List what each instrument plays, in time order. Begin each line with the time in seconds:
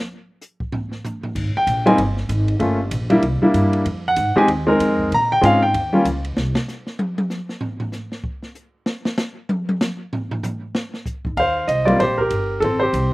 0.41 hi-hat pedal
0.60 kick
0.72 floor tom
0.92 snare
1.05 floor tom, hi-hat pedal
1.23 floor tom
1.35 upright bass G#1, kick, crash
1.54 grand piano G5, muted upright bass stroke
1.67 upright bass A#1, kick, hi-hat pedal, ride
1.86 grand piano G3 A#3 C4 D#4 G#5, ride
1.98 upright bass G1, kick, ride
2.17 snare
2.29 upright bass G#1, hi-hat pedal, ride
2.48 ride
2.59 upright bass G1, grand piano A3 A#3 C#4 F4, kick, ride
2.91 upright bass A#1, kick, hi-hat pedal, ride
3.10 grand piano G3 A#3 D4 E4, ride
3.22 upright bass C2, kick, ride
3.42 grand piano G3 A#3 D4 E4, muted upright bass stroke
3.54 upright bass G2, kick, hi-hat pedal, ride
3.73 ride
3.85 upright bass F2, kick, ride
4.08 grand piano F#5
4.16 upright bass G#2, kick, hi-hat pedal, ride
4.36 grand piano G#3 C4 D#4 G4 G#5, muted upright bass stroke
4.48 upright bass D#2, kick, ride
4.67 grand piano G#3 C4 D#4 A#4
4.80 upright bass F2, kick, hi-hat pedal, ride
4.99 kick
5.12 upright bass A#2, grand piano A#5, ride
5.32 grand piano G5
5.41 upright bass G#2, grand piano G#3 C4 C#4 F4 F5, hi-hat pedal, ride
5.62 grand piano G5
5.74 upright bass D#2, kick, ride
5.93 grand piano G3 A#3 C#4 F4
6.05 upright bass C#2, kick, hi-hat pedal, ride
6.25 ride
6.36 upright bass C2, snare
6.55 snare
6.68 snare, hi-hat pedal
6.87 snare
6.99 high tom
7.18 high tom
7.30 snare, hi-hat pedal
7.49 snare
7.61 floor tom
7.80 floor tom
7.92 snare, hi-hat pedal
8.12 snare
8.24 kick
8.43 snare
8.55 hi-hat pedal
8.86 snare
9.05 snare
9.18 snare, hi-hat pedal
9.49 high tom
9.69 high tom
9.81 snare, hi-hat pedal
10.13 floor tom
10.31 floor tom
10.43 floor tom, hi-hat pedal
10.75 snare
10.94 snare
11.06 kick, hi-hat pedal
11.25 upright bass G#1, kick
11.37 upright bass D#2, grand piano C5 F5, kick, crash
11.68 upright bass C2, grand piano D#5, kick, hi-hat pedal, ride
11.85 grand piano G3 A#3 C4 F4 D5, ride
11.99 upright bass A#1, grand piano G4 C5, kick, snare, ride
12.18 grand piano G4 A#4, kick
12.30 upright bass G1, hi-hat pedal, ride
12.60 upright bass A1, grand piano C4 A4, kick, ride
12.80 grand piano G4 C5
12.93 upright bass C2, kick, hi-hat pedal, ride